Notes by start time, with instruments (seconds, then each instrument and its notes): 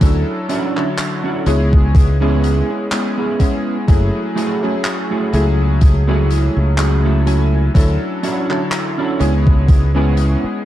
0.01 fingered electric bass D2, electric grand piano F#3 C#4 D4 E4 A4, kick, closed hi-hat
0.49 clean electric guitar C#4 D4 E4 F#4, closed hi-hat
0.76 electric grand piano D3 F#3 E4 A4 C#5, clap
0.98 clap, closed hi-hat
1.23 clean electric guitar C#4 D4 E4 F#4
1.46 fingered electric bass C#2, electric grand piano G#3 B3 E4 G#4 C#5, closed hi-hat
1.73 kick
1.94 muted clean electric guitar stroke, kick, closed hi-hat
2.20 electric grand piano G#3 B3 C#4 E4 G#4, clean electric guitar B3 C#4 E4 G#4
2.44 closed hi-hat
2.91 electric grand piano G#3 B3 C#4 E4 G#4, clap, closed hi-hat
3.17 clean electric guitar B3 C#4 E4 G#4
3.39 electric grand piano G#3 B3 C#4 E4 G#4, kick, closed hi-hat
3.87 fingered electric bass F#1, electric grand piano F#3 A3 C#4 E4 G#4, kick, closed hi-hat
4.35 clean electric guitar A3 E4 F#4 G#4, closed hi-hat
4.63 electric grand piano F#3 A3 C#4 E4 G#4
4.85 clap, closed hi-hat
5.10 clean electric guitar A3 E4 F#4 G#4
5.33 fingered electric bass C#2, electric grand piano F#3 A3 C#4 E4 G#4, closed hi-hat
5.81 muted clean electric guitar stroke, kick, closed hi-hat
6.07 electric grand piano F#3 A3 C#4 E4 G#4, clean electric guitar A3 E4 F#4 G#4
6.30 closed hi-hat
6.57 fingered electric bass C#2
6.77 electric grand piano F#3 A3 C#4 E4 G#4, clap, closed hi-hat
7.04 clean electric guitar A3 E4 F#4 A4
7.26 electric grand piano F#3 A3 C#4 E4 G#5, closed hi-hat
7.74 fingered electric bass D2, electric grand piano F#3 C#4 D4 E4 A4, kick, closed hi-hat
8.23 clean electric guitar C#4 D4 E4 F#4, closed hi-hat
8.50 electric grand piano D3 F#3 E4 A4 C#5, clap
8.72 clap, closed hi-hat
8.98 clean electric guitar C#4 D4 E4 F#4
9.19 fingered electric bass C#2, electric grand piano G#3 B3 E4 G#4 C#5, closed hi-hat
9.47 kick
9.68 muted clean electric guitar stroke, kick, closed hi-hat
9.94 electric grand piano G#3 B3 C#4 E4 G#4, clean electric guitar B3 C#4 E4 B4
10.17 closed hi-hat
10.44 muted fingered electric bass stroke